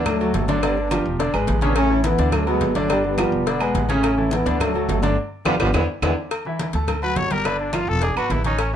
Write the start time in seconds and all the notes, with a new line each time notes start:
Already playing: D2 D3 D4 D5
0.06 F#3 A3, cowbell, high conga, low conga, low agogo, claves
0.20 F#3 F#4 A4, high conga, low agogo
0.34 G1 F#3 A3, cowbell, high conga, low timbale
0.48 D3 D4 D5, cowbell, high conga, low agogo
0.63 D3 G3 B3 D4 D5, cowbell, high conga, low agogo, claves
0.77 B3 D4, high conga
0.91 F3 F4 G4, cowbell, high conga, low timbale, low agogo, claves
1.06 E1, high conga
1.19 D3 D4 D5, cowbell, high conga, low agogo
1.33 G#1 G#3 G#4 B4, high conga, low agogo, claves
1.47 A1, cowbell, high conga, low timbale
1.61 C#3 B3 C#4 D4 C#5, cowbell, high conga, low agogo
1.76 A3 C#4, cowbell, low agogo, claves
1.90 E3 E4 A4, high conga
2.04 E3 B3, cowbell, high conga, low timbale, low agogo
2.18 D2 D3 D4 D5, cowbell, high conga
2.32 F#3 A3, cowbell, high conga, low conga, low agogo, claves
2.47 F#3 G#3 B3 F#4 A4, high conga, low agogo
2.61 G1, cowbell, high conga, low timbale
2.75 D3 F#3 A3 D4 D5, cowbell, high conga, low agogo
2.89 D3 G3 D4 D5, cowbell, low agogo, claves
3.04 G3 B3, high conga
3.18 F3 F4 G4, cowbell, high conga, low timbale, low agogo, claves
3.32 E1, high conga
3.47 D3 D4 D5, cowbell, high conga, low agogo
3.60 G#3 G#4 B4, high conga, low agogo, claves
3.75 A1, cowbell, high conga, low timbale
3.89 C#3 A3 C#4 C#5, cowbell, high conga, low agogo
4.03 cowbell, low agogo, claves
4.18 E3 E4 A4, high conga
4.31 E3 B3, cowbell, high conga, low timbale, low agogo
4.46 D2 D3 D4 D5, cowbell
4.60 F#3 A3, cowbell, high conga, low conga, low agogo, claves
4.74 F#3 F#4 A4, high conga, low agogo
4.89 G1 F#3 A3, cowbell, high conga, low timbale
5.03 D3 D4 D5, cowbell, high conga, low agogo
5.45 G1 F3 G3 B3 D4 F4 G4, cowbell, high conga, high timbale, claves
5.60 G1 F3 G3 B3 D4 F4 G4, cowbell, high conga, high timbale, claves
5.74 E2 E3 G#3 B3 D4 E4, cowbell, high conga, high timbale, claves
6.02 E2 E3 G#3 B3 D4 E4, cowbell, high conga, high timbale, claves
6.31 cowbell, high conga, low agogo, claves
6.45 E3 E4 E5, high conga
6.59 cowbell, high conga, low timbale, low agogo
6.73 D2 A3 A4 A5, cowbell, high conga
6.88 cowbell, high conga, low conga, low agogo, claves
7.02 F#3 F#4 B4 F#5, high conga, low agogo
7.16 G1 C#5, cowbell, high conga, low timbale
7.30 G3 G4 A#4 G5, cowbell, high conga, low agogo
7.44 D3 D4 B4 D5, cowbell, high conga, low agogo, claves
7.59 D4, high conga
7.73 F3 F4 F5, cowbell, high conga, low timbale, low agogo, claves
7.87 E1 A4, high conga
8.02 D4 G#4 D5 D6, cowbell, high conga, low agogo
8.16 G#1 B3 F#4 B4 B5, high conga, low agogo, claves
8.30 A1 E4, cowbell, high conga, low timbale
8.44 C#4 D#4 C#5 C#6, cowbell, high conga, low agogo
8.59 C#4, cowbell, high conga, low agogo, claves